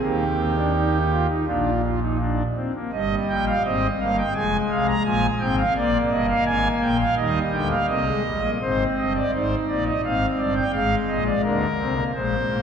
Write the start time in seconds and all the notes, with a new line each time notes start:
0.01 D#2 D#3 A#3 G4
0.38 C4
0.56 D4
0.75 D#4
1.11 F4
1.29 D#4
1.47 A#1 A#2 D4 F4
1.84 F4
2.02 D#4
2.20 D4
2.56 C4
2.75 A#3
2.92 G1 G2 G3 D#5
3.29 A#1 A#2 G5
3.46 F5
3.65 G#1 G#2 C4 D#5
4.00 G1 G2 A#3 F5
4.18 G5
4.35 F1 F2 G#3 G#5
4.71 C2 C3 F5
4.88 A#5
5.04 A#1 A#2 F3 G#5
5.40 G#1 G#2 C4 G5
5.58 F5
5.75 A#1 A#2 A#3 D5
6.11 G1 G2 D#5
6.29 F5
6.46 G#1 G#2 G#5
6.82 A#1 A#2 G5
6.99 F5
7.17 D#2 D#3 G3 D#5
7.52 D2 D3 G5
7.70 F5
7.87 C2 C3 A#3 D#5
8.06 G#3
8.24 A#1 A#2 G3
8.43 A#3
8.62 G#1 G#2 C4 C5
8.98 G1 G2 D#5
9.15 D5
9.33 G#1 G#2 D#4 C5
9.68 A#1 A#2 D5
9.86 D#5
10.03 G#1 G#2 C4 F5
10.38 G1 G2 D5
10.56 G5
10.73 G#1 G#2 G#3 F5
11.08 A#1 A#2 D#5
11.25 D5
11.43 D2 D3 A#3 A#4
11.78 C2 C3 C4
11.96 A#3
12.13 A#1 A#2 G#3 C5
12.48 G#1 G#2 A#3